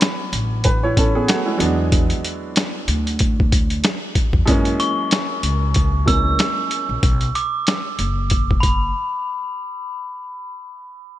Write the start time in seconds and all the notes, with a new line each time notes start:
Already playing: E3 F#3 B3 C#4 D4
0.01 snare, closed hi-hat
0.33 A1, closed hi-hat
0.64 B4, kick, closed hi-hat
0.83 E4 C#5
0.97 C#4 A4, kick, closed hi-hat
1.15 B3 G#4
1.28 A3 F#4, snare, closed hi-hat
1.46 G#3 E4
1.57 E2 F#3 G#3 B3, closed hi-hat
1.61 D4
1.92 kick, closed hi-hat
2.10 closed hi-hat
2.25 closed hi-hat
2.56 snare, closed hi-hat
2.88 D2, closed hi-hat
3.07 closed hi-hat
3.19 kick, closed hi-hat
3.40 kick
3.52 kick, closed hi-hat
3.70 closed hi-hat
3.84 snare, closed hi-hat
4.15 kick, closed hi-hat
4.33 E2, kick
4.46 F#2 E3 G#3 A#3, kick, closed hi-hat
4.50 C#4
4.65 closed hi-hat
4.80 C#6, closed hi-hat
5.11 snare, closed hi-hat
5.43 C#2, closed hi-hat
5.74 kick, closed hi-hat
6.06 F#2 E3 G#3 A#3 C#4 E6, kick, closed hi-hat
6.39 snare, closed hi-hat
6.71 closed hi-hat
6.89 A#1
7.03 B1, kick, closed hi-hat
7.21 closed hi-hat
7.35 D6, closed hi-hat
7.67 snare, closed hi-hat
7.99 F#1, closed hi-hat
8.30 kick, closed hi-hat
8.51 kick
8.60 B5, kick, closed hi-hat